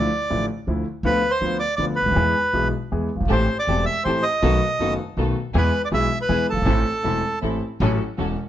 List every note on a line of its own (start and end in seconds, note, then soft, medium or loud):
0.00 0.46 D5 medium
0.30 0.46 A1 soft
0.30 0.46 A1 medium
0.30 0.46 A2 soft
0.30 0.46 D3 soft
0.30 0.46 F3 soft
0.30 0.46 A3 soft
0.30 0.46 E4 soft
0.67 0.83 D2 medium
0.67 0.83 D2 soft
0.67 0.83 D3 soft
0.67 0.83 F3 soft
0.67 0.83 A3 soft
0.67 0.84 E4 soft
1.03 1.19 D2 medium
1.03 1.20 D2 medium
1.03 1.20 D3 medium
1.03 1.20 F3 medium
1.03 1.20 B3 medium
1.03 1.20 F4 medium
1.03 1.31 B4 medium
1.31 1.57 C5 medium
1.41 1.57 D2 soft
1.41 1.58 D2 soft
1.41 1.57 D3 soft
1.41 1.57 F3 soft
1.41 1.58 B3 soft
1.41 1.58 F4 soft
1.60 1.75 D5 medium
1.76 1.94 D2 medium
1.76 1.95 D2 soft
1.76 1.95 D3 soft
1.76 1.95 F3 soft
1.76 1.95 B3 soft
1.76 1.95 F4 soft
1.76 1.85 D5 medium
1.96 2.68 B4 medium
2.01 2.06 C#2 soft
2.01 2.08 C#2 soft
2.06 2.11 D2 medium
2.06 2.12 D2 medium
2.11 2.16 D#2 medium
2.11 2.17 D#2 medium
2.16 2.32 E2 medium
2.16 2.32 E3 medium
2.16 2.32 G#3 medium
2.16 2.32 B3 medium
2.16 2.32 G#4 medium
2.53 2.70 B1 medium
2.53 2.70 B1 soft
2.53 2.70 B2 soft
2.53 2.70 E3 soft
2.53 2.70 G#3 soft
2.53 2.70 B3 soft
2.53 2.70 G#4 soft
2.92 3.08 E2 soft
2.92 3.08 E3 soft
2.92 3.08 G#3 soft
2.92 3.08 B3 soft
2.92 3.08 G#4 soft
3.15 3.20 F#1 soft
3.20 3.25 G1 soft
3.25 3.30 G#1 medium
3.25 3.31 G#1 medium
3.25 3.45 C4 medium
3.25 3.45 G4 medium
3.25 3.45 A4 medium
3.30 3.46 A1 medium
3.30 3.46 A2 medium
3.30 3.46 E3 medium
3.30 3.46 A3 medium
3.30 3.46 C4 soft
3.30 3.46 G4 medium
3.30 3.58 C5 medium
3.59 3.85 D5 medium
3.67 3.83 E1 medium
3.67 3.84 E1 soft
3.67 3.84 E2 soft
3.67 3.84 E3 soft
3.67 3.84 A3 soft
3.67 3.83 C4 soft
3.67 3.84 C4 soft
3.67 3.83 G4 soft
3.67 3.84 G4 soft
3.67 3.84 A4 soft
3.86 4.04 E5 medium
4.04 4.21 A1 medium
4.04 4.22 A1 soft
4.04 4.22 A2 soft
4.04 4.21 E3 soft
4.04 4.22 A3 soft
4.04 4.21 C4 soft
4.04 4.22 C4 soft
4.04 4.21 G4 soft
4.04 4.22 G4 soft
4.04 4.21 A4 soft
4.04 4.24 C5 medium
4.23 4.94 D#5 medium
4.42 4.58 B1 medium
4.42 4.58 B2 medium
4.42 4.58 D#3 medium
4.42 4.58 A3 soft
4.42 4.58 B3 medium
4.42 4.58 D#4 medium
4.42 4.59 F#4 medium
4.42 4.58 A4 medium
4.80 4.95 F#1 medium
4.80 4.96 F#1 soft
4.80 4.96 F#2 soft
4.80 4.96 D#3 soft
4.80 4.96 A3 soft
4.80 4.95 B3 soft
4.80 4.96 B3 soft
4.80 4.95 D#4 soft
4.80 4.96 F#4 soft
4.80 4.96 A4 medium
5.17 5.32 B1 medium
5.17 5.33 B1 soft
5.17 5.33 B2 soft
5.17 5.33 D#3 soft
5.17 5.33 A3 soft
5.17 5.33 B3 soft
5.17 5.33 D#4 soft
5.17 5.33 F#4 soft
5.17 5.33 A4 medium
5.54 5.70 E2 medium
5.54 5.70 E3 medium
5.54 5.70 G#3 medium
5.54 5.70 B3 medium
5.54 5.70 E4 medium
5.54 5.70 G#4 medium
5.54 5.82 B4 medium
5.85 5.89 D5 medium
5.92 6.07 B1 soft
5.92 6.07 B1 medium
5.92 6.07 B2 soft
5.92 6.07 E3 soft
5.92 6.07 G#3 soft
5.92 6.07 B3 soft
5.92 6.07 E4 soft
5.92 6.07 G#4 soft
5.92 6.08 G#4 soft
5.92 6.19 E5 medium
6.22 6.47 B4 medium
6.29 6.45 E2 medium
6.29 6.45 E2 soft
6.29 6.45 E3 soft
6.29 6.45 G#3 soft
6.29 6.44 B3 soft
6.29 6.45 B3 soft
6.29 6.45 E4 soft
6.29 6.45 G#4 medium
6.29 6.45 G#4 soft
6.50 6.56 F#1 soft
6.50 6.57 F#1 soft
6.50 7.39 A4 medium
6.57 6.61 G1 soft
6.57 6.62 G1 medium
6.62 6.66 G#1 medium
6.62 6.67 G#1 medium
6.62 6.82 C4 medium
6.66 6.82 A1 medium
6.66 6.82 A2 medium
6.66 6.82 E3 medium
6.66 6.82 A3 medium
6.66 6.82 C4 medium
6.66 6.82 E4 medium
6.66 6.82 A4 medium
7.03 7.20 E1 soft
7.03 7.20 E2 soft
7.03 7.20 E3 soft
7.03 7.20 A3 soft
7.03 7.19 C4 soft
7.03 7.20 C4 soft
7.03 7.20 E4 soft
7.03 7.20 A4 soft
7.03 7.21 A4 soft
7.42 7.58 A1 medium
7.42 7.58 A1 soft
7.42 7.59 A2 soft
7.42 7.58 E3 soft
7.42 7.58 A3 soft
7.42 7.58 C4 soft
7.42 7.58 E4 soft
7.42 7.58 A4 soft
7.80 7.96 A1 medium
7.80 7.97 A1 medium
7.80 7.97 A2 medium
7.80 7.97 F#3 medium
7.80 7.96 C#4 medium
7.80 7.97 C#4 medium
7.80 7.97 E4 medium
7.80 7.96 F#4 medium
7.80 7.96 A4 medium
7.80 7.97 A4 medium
8.18 8.34 E1 soft
8.18 8.34 E1 medium
8.18 8.34 E2 soft
8.18 8.34 C#4 soft
8.18 8.34 F#4 soft
8.18 8.34 A4 soft